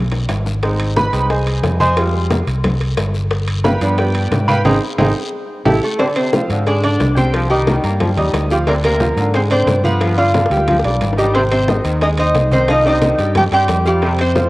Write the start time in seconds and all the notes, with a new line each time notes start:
Already playing: B1
0.12 low bongo, high conga, high timbale
0.29 G#1, low bongo, high conga, high timbale, low timbale, short guiro
0.46 low bongo, high conga, short guiro
0.62 G#3 C4 D#4, high bongo, high conga, high timbale, long guiro
0.80 high conga, high timbale
0.96 B4 B5, high bongo, high conga, low timbale, short guiro
1.13 C2 G#3 C4 D#4, high timbale, short guiro
1.30 G#4 C5 D#5 G#5, high bongo, high conga, high timbale, long guiro
1.47 high conga, high timbale
1.63 F2, high bongo, low bongo, high conga, high timbale, low timbale, short guiro
1.80 C5 D#5 G#5 C6, high conga, short guiro
1.97 G3 G#3 F4, high bongo, high conga, high timbale, long guiro
2.14 high bongo, high conga
2.31 high bongo, high conga, high timbale, low timbale, short guiro
2.47 C2, high conga, high timbale, short guiro
2.64 high bongo, high conga, low conga, high timbale, long guiro
2.81 high bongo, high conga, high timbale
2.97 G1, high bongo, low bongo, high conga, high timbale, low timbale, short guiro
3.14 high bongo, high conga, short guiro
3.31 high bongo, high conga, high timbale, long guiro
3.48 high conga, high timbale
3.64 B4 F5 G5 B5, high bongo, high conga, low timbale, short guiro
3.81 G2 F3 B3 D4, high timbale, short guiro
3.98 G4 B4 D5 G5, high bongo, high conga, high timbale, long guiro
4.15 high conga, high timbale
4.31 G#2, high bongo, low bongo, high conga, high timbale, low timbale, short guiro
4.48 B4 F5 G5 B5, high conga, short guiro
4.64 G#1 C4 D#4 G#4, low bongo, high conga, high timbale, long guiro
4.98 G#1 C4 D#4 G#4, low bongo, high conga, high timbale, long guiro
5.65 A1 E4 G4 A4, low bongo, high conga, high timbale, long guiro
5.83 A3 A4
5.99 C3 D3 C4 D4 C5 D5, high bongo, high conga, high timbale, long guiro
6.16 C3 C4 C5, high conga, high timbale
6.33 F3 F4 F5, high bongo, high conga, low timbale, short guiro
6.49 G#2 D3, high timbale, short guiro
6.66 G#3 D4 G#4 D5 G#5, high bongo, high conga, high timbale, long guiro
6.83 D4 D5 D6, high conga, high timbale
6.99 C2, high bongo, low bongo, high conga, high timbale, low timbale, short guiro
7.16 G3 C4 G4 C5 G5, high conga, short guiro
7.33 F3, high bongo, high conga, high timbale, long guiro
7.50 D#3 G3 D#4 G4 D#5, high bongo, high conga
7.67 D#3, high bongo, high conga, high timbale, low timbale, short guiro
7.83 G2 A#3 A#4 A#5, high conga, high timbale, short guiro
8.00 F3, high bongo, high conga, low conga, high timbale, long guiro
8.16 D#2 G3 D#4 D#5 D#6, high bongo, high conga, low conga, high timbale
8.33 D2, high bongo, low bongo, high conga, high timbale, low timbale, short guiro
8.50 F3 G3 F4 G4 F5, high bongo, high conga, short guiro
8.67 C3 D3 A#3 D4 A#4 D5, high bongo, high conga, high timbale, long guiro
8.84 C3 A#3 A#4, high conga, high timbale
9.00 F3 F4 F5, high bongo, high conga, low timbale, short guiro
9.17 G#2 D3, high timbale, short guiro
9.34 G#3 C4 G#4 C5 G#5, high bongo, high conga, high timbale, long guiro
9.51 C4 D4 C5 D5 D6, high conga, high timbale
9.67 G2, high bongo, low bongo, high conga, high timbale, low timbale, short guiro
9.84 F3 B3 F4 B4 F5, high conga, short guiro
10.01 F3, high bongo, high conga, high timbale, long guiro
10.17 D3 D4 F4 D5 F5, high bongo, high conga
10.34 D3, high bongo, high conga, high timbale, low timbale, short guiro
10.46 high bongo
10.50 D2 G3 G4 G5, high conga, high timbale, short guiro
10.57 low bongo
10.68 F3, high bongo, high conga, low conga, high timbale, long guiro
10.79 high bongo
10.84 B1 G3 D4 D5 D6, high conga, high timbale
10.90 low bongo
11.00 G#1, low bongo, high conga, high timbale, low timbale, short guiro
11.13 low bongo
11.18 D#3 G3 D#4 G4 D#5, high conga, short guiro
11.24 low bongo
11.34 C3 C4 C5, high bongo, high conga, high timbale, long guiro
11.52 C3 C4 C5, high conga, high timbale
11.68 D#3 D#4 D#5, high bongo, high conga, low timbale, short guiro
11.84 D#2 D#3, high timbale, short guiro
12.01 G#3 D#4 G#4 D#5 G#5, high bongo, high conga, high timbale, long guiro
12.18 C4 D#4 C5 D#5 C6, high conga, high timbale
12.34 C2, high bongo, low bongo, high conga, high timbale, low timbale, short guiro
12.52 D#3 C4 D#4 C5 D#5, high conga, short guiro
12.68 F3 D#4 D#5, high bongo, high conga, high timbale, long guiro
12.85 C3 C4 D#4 C5 D#5, high bongo, high conga
13.01 D#3, high bongo, high conga, high timbale, low timbale, short guiro
13.19 G2 G3 G4 D5 G5, high conga, high timbale, short guiro
13.35 F3 G4 G5, high bongo, high conga, low conga, high timbale, long guiro
13.51 G2 G3 C4 G4 C5 G5 C6, high bongo, high timbale
13.68 F2, high bongo, low bongo, high conga, high timbale, low timbale, short guiro
13.85 F3 G3 F4 G4 F5, high bongo, high conga, short guiro
14.02 C3 C4 C5, high bongo, high conga, high timbale, long guiro
14.19 C3 C4 C5, high conga, high timbale
14.35 F3 F4 F5, high bongo, high conga, low timbale, short guiro